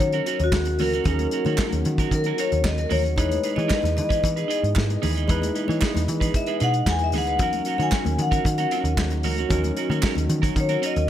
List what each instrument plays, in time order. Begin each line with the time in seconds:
Already playing: french horn section D#3 F#3 A#3 C#4 F#4, tine electric piano F#3 C#4 D#4 A#4, vibraphone C#5
0.00 picked electric bass D#3, muted clean electric guitar stroke, kick, closed hi-hat, muted conga
0.12 clean electric guitar C#4 F#4 A#4, closed hi-hat, muted conga
0.26 clean electric guitar C#4 F#4 A#4, closed hi-hat
0.40 picked electric bass D#2, muted clean electric guitar stroke, closed hi-hat
0.44 vibraphone F#4
0.52 picked electric bass D#2, muted clean electric guitar stroke, kick, snare, clap, muted conga
0.65 muted clean electric guitar stroke, closed hi-hat, muted conga
0.79 picked electric bass D2, clean electric guitar C#4 F#4 A#4, vibraphone A#4, open hi-hat, high conga, low conga
0.93 clean electric guitar C#4 F#4 A#4, closed hi-hat
1.04 picked electric bass D#2, tine electric piano F#3 C#4 D#4 G#4, clean electric guitar C#4 F#4 A#4, kick, closed hi-hat, muted conga, low conga
1.14 tine electric piano A#4
1.19 closed hi-hat, muted conga, high conga
1.31 clean electric guitar C#4 F#4 A#4, closed hi-hat
1.45 picked electric bass D#3, clean electric guitar C#4 F#4 C#5, closed hi-hat, high conga
1.58 clean electric guitar C#4 F#4 A#4, kick, snare, clap
1.71 picked electric bass D#2, muted clean electric guitar stroke, closed hi-hat, muted conga, high conga
1.85 picked electric bass D#3, muted clean electric guitar stroke, closed hi-hat, low conga
1.98 clean electric guitar C#4 F#4 A#4, kick, closed hi-hat
2.11 picked electric bass D#3, vibraphone A#4, muted clean electric guitar stroke, kick, closed hi-hat
2.24 clean electric guitar C#4 F#4 A#4, closed hi-hat, muted conga
2.38 clean electric guitar C#4 F#4 A#4, vibraphone C#5, closed hi-hat
2.52 picked electric bass D#2, muted clean electric guitar stroke, closed hi-hat
2.64 picked electric bass D#2, vibraphone D#5, muted clean electric guitar stroke, kick, snare, clap, muted conga
2.78 vibraphone A#4, muted clean electric guitar stroke, closed hi-hat
2.90 picked electric bass D#2, clean electric guitar C#4 F#4 A#4, vibraphone C#5, open hi-hat, high conga, low conga
3.04 muted clean electric guitar stroke, closed hi-hat
3.16 picked electric bass E2, french horn section E3 G#3 B3 G#4 D#5, tine electric piano G#3 D#4 E4 B4, clean electric guitar D#4 G#4 B4, kick, closed hi-hat, muted conga, low conga
3.31 closed hi-hat, high conga
3.44 clean electric guitar D#4 G#4 B4, closed hi-hat
3.56 picked electric bass E3, clean electric guitar D#4 G#4 C#5, vibraphone D#5, closed hi-hat, high conga
3.68 clean electric guitar D#4 G#4 B4, kick, snare, clap
3.82 picked electric bass E2, muted clean electric guitar stroke, snare, closed hi-hat, high conga
3.96 picked electric bass E3, vibraphone D#5, muted clean electric guitar stroke, closed hi-hat, low conga
4.09 clean electric guitar D#4 G#4 B4, kick, closed hi-hat
4.23 picked electric bass E3, muted clean electric guitar stroke, kick, closed hi-hat, muted conga
4.36 clean electric guitar D#4 G#4 B4, closed hi-hat
4.48 clean electric guitar D#4 G#4 B4, closed hi-hat
4.63 picked electric bass G#2, muted clean electric guitar stroke, closed hi-hat
4.75 picked electric bass G#2, muted clean electric guitar stroke, kick, snare, clap, muted conga
4.89 muted clean electric guitar stroke, closed hi-hat
5.02 picked electric bass D#2, clean electric guitar D#4 G#4 B4, open hi-hat, high conga, low conga
5.15 clean electric guitar D#4 G#4 B4, closed hi-hat
5.28 picked electric bass E2, tine electric piano G#3 D#4 E4 B4, clean electric guitar D#4 G#4 B4, kick, closed hi-hat, muted conga, low conga
5.42 closed hi-hat, muted conga, high conga
5.55 clean electric guitar D#4 G#4 B4, closed hi-hat
5.68 picked electric bass E3, clean electric guitar D#4 G#4 C#5, closed hi-hat, high conga
5.81 clean electric guitar D#4 G#4 B4, kick, snare, clap
5.94 picked electric bass E2, muted clean electric guitar stroke, snare, closed hi-hat, high conga
6.08 picked electric bass E3, muted clean electric guitar stroke, closed hi-hat, low conga
6.20 clean electric guitar D#4 G#4 B4, kick, closed hi-hat
6.34 vibraphone E5, muted clean electric guitar stroke, kick, closed hi-hat
6.46 clean electric guitar D#4 G#4 B4, closed hi-hat, muted conga
6.60 picked electric bass B2, clean electric guitar D#4 G#4 B4, vibraphone F#5, closed hi-hat
6.74 muted clean electric guitar stroke, closed hi-hat
6.86 picked electric bass E2, vibraphone G#5, muted clean electric guitar stroke, kick, snare, clap, muted conga
6.99 muted clean electric guitar stroke, closed hi-hat, muted conga
7.04 vibraphone E5
7.12 picked electric bass D2, clean electric guitar D#4 G#4 B4, open hi-hat, high conga, low conga
7.18 vibraphone F#5
7.27 clean electric guitar D#4 G#4 B4, closed hi-hat
7.39 picked electric bass D#2, french horn section D#3 F#3 A#3 C#4 F#4, tine electric piano F#3 C#4 D#4 A#4, clean electric guitar C#4 F#4 A#4, kick, closed hi-hat, muted conga, low conga
7.53 closed hi-hat, high conga
7.65 clean electric guitar C#4 F#4 A#4, closed hi-hat
7.78 picked electric bass D#3, clean electric guitar C#4 F#4 C#5, closed hi-hat, high conga
7.82 vibraphone G#5
7.91 clean electric guitar C#4 F#4 A#4, kick, snare, clap
8.05 picked electric bass D#2, muted clean electric guitar stroke, closed hi-hat, muted conga, high conga
8.18 picked electric bass D#3, vibraphone F#5, muted clean electric guitar stroke, closed hi-hat, low conga
8.31 clean electric guitar C#4 F#4 A#4, kick, closed hi-hat
8.44 picked electric bass D#3, muted clean electric guitar stroke, kick, closed hi-hat, muted conga
8.58 clean electric guitar C#4 F#4 A#4, closed hi-hat, muted conga
8.71 clean electric guitar C#4 F#4 A#4, closed hi-hat
8.84 picked electric bass D#2, muted clean electric guitar stroke, closed hi-hat
8.97 picked electric bass D#2, muted clean electric guitar stroke, kick, snare, clap
9.10 muted clean electric guitar stroke, closed hi-hat
9.23 picked electric bass D2, clean electric guitar C#4 F#4 A#4, open hi-hat, high conga, low conga
9.38 clean electric guitar C#4 F#4 A#4, closed hi-hat
9.49 picked electric bass D#2, tine electric piano F#3 C#4 D#4 A#4, clean electric guitar C#4 F#4 A#4, kick, closed hi-hat, muted conga, low conga
9.64 closed hi-hat, muted conga, high conga
9.77 clean electric guitar C#4 F#4 A#4, closed hi-hat
9.90 picked electric bass D#3, clean electric guitar C#4 F#4 C#5, closed hi-hat, high conga
10.01 clean electric guitar C#4 F#4 A#4, kick, snare, clap, muted conga
10.15 picked electric bass D#2, muted clean electric guitar stroke, closed hi-hat, muted conga, high conga
10.29 picked electric bass D#3, muted clean electric guitar stroke, closed hi-hat, low conga
10.42 clean electric guitar C#4 F#4 A#4, kick, closed hi-hat
10.56 picked electric bass D#3, muted clean electric guitar stroke, kick, closed hi-hat
10.60 vibraphone C#5
10.69 clean electric guitar C#4 F#4 A#4, closed hi-hat, muted conga
10.82 clean electric guitar C#4 F#4 A#4, vibraphone D#5, closed hi-hat
10.95 picked electric bass D#2, muted clean electric guitar stroke, closed hi-hat